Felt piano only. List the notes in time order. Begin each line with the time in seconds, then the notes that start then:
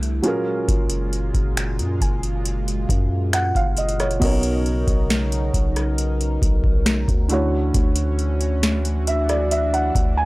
Already playing: C3 C4 D4 E4 B4
0.22 F#3 C#4 F4 G#4
0.28 A#4
3.34 F#5
3.56 F5
3.78 D#5
4.00 C#5
4.20 B2 B3 C#4
4.24 A#4 C#5
4.29 D#4
7.28 D3 A3 E4 F#4
7.33 C#5
9.08 E5
9.29 D5
9.52 E5
9.74 F#5
10.17 G#5